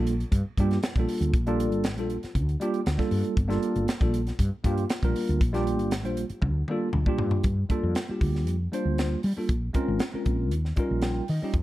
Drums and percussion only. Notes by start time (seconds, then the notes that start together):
0.07 closed hi-hat
0.20 closed hi-hat
0.32 kick, closed hi-hat
0.57 kick, closed hi-hat
0.71 snare, closed hi-hat
0.83 snare, closed hi-hat
0.96 kick, closed hi-hat
1.09 open hi-hat
1.22 closed hi-hat
1.34 kick, closed hi-hat
1.47 closed hi-hat
1.60 closed hi-hat
1.72 closed hi-hat
1.84 snare, closed hi-hat
1.98 closed hi-hat
2.10 closed hi-hat
2.23 snare, closed hi-hat
2.35 kick, closed hi-hat
2.49 closed hi-hat
2.61 closed hi-hat
2.74 closed hi-hat
2.86 snare, closed hi-hat
2.99 kick, snare, closed hi-hat
3.11 open hi-hat
3.25 closed hi-hat
3.37 kick, closed hi-hat
3.50 snare, closed hi-hat
3.63 closed hi-hat
3.76 closed hi-hat
3.88 snare, closed hi-hat
4.01 kick, closed hi-hat
4.14 closed hi-hat
4.27 snare, closed hi-hat
4.39 kick, closed hi-hat
4.64 kick, closed hi-hat
4.77 closed hi-hat
4.89 snare, closed hi-hat
5.03 kick, closed hi-hat
5.16 open hi-hat
5.28 closed hi-hat
5.41 kick, closed hi-hat
5.54 snare, closed hi-hat
5.67 closed hi-hat
5.79 closed hi-hat
5.91 snare, closed hi-hat
6.05 closed hi-hat
6.17 closed hi-hat
6.30 closed hi-hat
6.42 kick, high tom
6.68 mid tom
6.93 mid tom
7.06 kick
7.18 floor tom
7.31 floor tom
7.44 kick, closed hi-hat
7.70 kick, closed hi-hat
7.95 snare, closed hi-hat
8.21 kick, open hi-hat
8.35 snare
8.47 closed hi-hat
8.73 closed hi-hat
8.98 snare, closed hi-hat
9.23 open hi-hat
9.49 kick, closed hi-hat
9.74 kick, closed hi-hat
9.99 snare, closed hi-hat
10.26 kick, closed hi-hat
10.51 closed hi-hat
10.65 snare
10.76 kick, closed hi-hat
11.02 snare, closed hi-hat
11.28 open hi-hat
11.53 kick, closed hi-hat